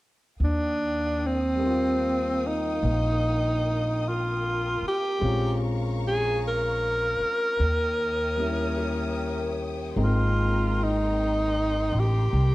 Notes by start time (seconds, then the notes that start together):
0.38 D#2 A#4 F5 G5 D#6
0.44 D4
1.26 C4
1.55 G3 A#3
1.62 C4
1.66 F4
2.47 D#4
2.83 A#1
4.09 F4
4.82 muted upright bass stroke
4.88 G4
5.19 A#1 G#3 C4 C#4 F5 A#5 C#6
5.24 F4
6.08 G#4
6.48 A#4
7.20 muted upright bass stroke
7.59 D#2 C#5 E5 G5 D#6
8.36 G3 A#3 C#4
8.41 E4
8.77 G4
9.37 A#4
9.96 G#1 G#3 A#3 C4 D#4 A#4 A#5 C6
10.04 F4
10.84 D#4
11.92 A1
12.00 G4
12.30 C2 A#5